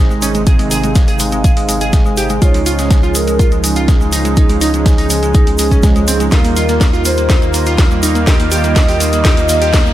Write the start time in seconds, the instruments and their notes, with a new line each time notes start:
Already playing: sub bass G#1, analog synth pad C3 D#3 G#3 D#4, supersaw synth C4 D#4 G#4
0.10 synth arpeggio sound G#3, shaker
0.22 synth arpeggio sound C#4, open hi-hat, tambourine, shaker
0.34 synth arpeggio sound G#3, closed hi-hat, shaker
0.47 supersaw synth C4 D#4 G#4, synth arpeggio sound G#4, analog synth lead F5, kick, closed hi-hat, tambourine, shaker
0.59 synth arpeggio sound G#3, closed hi-hat, shaker
0.71 synth arpeggio sound G#4, open hi-hat, tambourine, shaker
0.84 synth arpeggio sound G#3, supersaw synth C4 D#4 G#4, closed hi-hat, shaker
0.95 synth arpeggio sound G#3, kick, snare, closed hi-hat, tambourine, shaker
1.08 synth arpeggio sound G#4, open hi-hat, shaker
1.19 synth arpeggio sound G#3, open hi-hat, tambourine, shaker
1.32 synth arpeggio sound G#3, closed hi-hat, shaker
1.44 synth arpeggio sound G#4, kick, closed hi-hat, tambourine, shaker
1.57 synth arpeggio sound G#3, closed hi-hat, shaker
1.69 synth arpeggio sound G#3, open hi-hat, tambourine, shaker
1.81 synth arpeggio sound G#4, closed hi-hat, shaker
1.93 synth arpeggio sound G#3, kick, snare, closed hi-hat, tambourine, shaker
2.06 synth arpeggio sound G#3, shaker
2.17 synth arpeggio sound G4, open hi-hat, tambourine, shaker
2.30 synth arpeggio sound G#3, closed hi-hat, shaker
2.42 sub bass C#2, analog synth pad C#3 F3 D#4, supersaw synth F3 G#3 C#4 D#4 G#4, synth arpeggio sound F4, analog synth lead C#5, kick, closed hi-hat, tambourine, shaker
2.54 synth arpeggio sound G#3, closed hi-hat, shaker
2.66 synth arpeggio sound F4, open hi-hat, tambourine, shaker
2.79 supersaw synth F3 G#3 C#4 D#4 G#4, synth arpeggio sound G#3, snare, closed hi-hat, shaker
2.91 synth arpeggio sound G#3, kick, snare, closed hi-hat, tambourine, shaker
3.03 synth arpeggio sound F4, shaker
3.15 synth arpeggio sound G#3, analog synth lead A#4, open hi-hat, tambourine, shaker
3.28 synth arpeggio sound G#3, closed hi-hat, shaker
3.39 synth arpeggio sound F4, kick, closed hi-hat, tambourine, shaker
3.51 synth arpeggio sound G#3, closed hi-hat, shaker
3.64 synth arpeggio sound G#3, open hi-hat, shaker
3.76 synth arpeggio sound F4, closed hi-hat, shaker
3.88 synth arpeggio sound G#3, kick, snare, closed hi-hat, tambourine, shaker
4.01 synth arpeggio sound G#3, shaker
4.12 synth arpeggio sound D#4, open hi-hat, tambourine, shaker
4.25 synth arpeggio sound G#3, closed hi-hat, shaker
4.37 supersaw synth F3 G#3 C#4 D#4 G#4, synth arpeggio sound D#4, analog synth lead G#4, kick, closed hi-hat, tambourine, shaker
4.49 synth arpeggio sound G#3, closed hi-hat, shaker
4.61 synth arpeggio sound D#4, open hi-hat, tambourine, shaker
4.74 supersaw synth F3 G#3 C#4 D#4 G#4, synth arpeggio sound G#3, closed hi-hat, shaker
4.86 synth arpeggio sound G#3, kick, snare, closed hi-hat, tambourine, shaker
4.98 synth arpeggio sound D#4, open hi-hat, shaker
5.10 synth arpeggio sound G#3, open hi-hat, tambourine, shaker
5.23 synth arpeggio sound G#3, closed hi-hat, shaker
5.34 synth arpeggio sound D#4, kick, closed hi-hat, tambourine, shaker
5.47 synth arpeggio sound G#3, closed hi-hat, shaker
5.58 synth arpeggio sound G#3, open hi-hat, tambourine, shaker
5.71 synth arpeggio sound C#4, kick, closed hi-hat, shaker
5.83 synth arpeggio sound G#3, kick, snare, closed hi-hat, tambourine, shaker
5.96 synth arpeggio sound G#3, closed hi-hat, shaker
6.08 synth arpeggio sound C4, open hi-hat, tambourine, shaker
6.20 synth arpeggio sound G#3, closed hi-hat, shaker
6.31 sub bass D#2, analog synth pad D#3 A#3 F4, supersaw synth G3 A#3 D#4 F4 A#4, synth arpeggio sound F4, analog synth lead A#4, kick, snare, closed hi-hat, tambourine, riser, shaker
6.44 synth arpeggio sound A#3, closed hi-hat, shaker
6.56 synth arpeggio sound F4, open hi-hat, tambourine, shaker
6.69 supersaw synth G3 A#3 D#4 F4 A#4, synth arpeggio sound A#3, snare, closed hi-hat, shaker
6.81 synth arpeggio sound A#3, kick, snare, closed hi-hat, tambourine, shaker
6.93 synth arpeggio sound F4, shaker
7.05 synth arpeggio sound A#3, analog synth lead C5, open hi-hat, tambourine, shaker
7.17 synth arpeggio sound A#3, closed hi-hat, shaker
7.30 synth arpeggio sound F4, kick, snare, closed hi-hat, tambourine, shaker
7.42 synth arpeggio sound A#3, closed hi-hat, shaker
7.54 synth arpeggio sound A#3, open hi-hat, tambourine, shaker
7.66 synth arpeggio sound F4, closed hi-hat, shaker
7.78 synth arpeggio sound A#3, kick, snare, closed hi-hat, tambourine, shaker
7.91 synth arpeggio sound A#3, shaker
8.03 synth arpeggio sound D#4, open hi-hat, tambourine, shaker
8.15 synth arpeggio sound A#3, closed hi-hat, shaker
8.27 supersaw synth G3 A#3 D#4 F4 A#4, synth arpeggio sound G4, analog synth lead D#5, kick, snare, closed hi-hat, tambourine, shaker
8.40 synth arpeggio sound A#3, closed hi-hat, shaker
8.51 synth arpeggio sound G4, open hi-hat, tambourine, shaker
8.64 supersaw synth G3 A#3 D#4 F4 A#4, synth arpeggio sound A#3, closed hi-hat, shaker
8.76 synth arpeggio sound A#3, kick, snare, closed hi-hat, tambourine, shaker
8.88 synth arpeggio sound G4, open hi-hat, shaker
9.00 synth arpeggio sound A#3, open hi-hat, tambourine, shaker
9.13 synth arpeggio sound A#3, closed hi-hat, shaker
9.25 synth arpeggio sound G4, kick, snare, closed hi-hat, tambourine, shaker
9.37 synth arpeggio sound A#3, closed hi-hat, shaker
9.49 synth arpeggio sound A#3, open hi-hat, tambourine, shaker
9.62 synth arpeggio sound G4, closed hi-hat, shaker
9.73 synth arpeggio sound A#3, kick, snare, closed hi-hat, tambourine, shaker
9.86 synth arpeggio sound A#3, shaker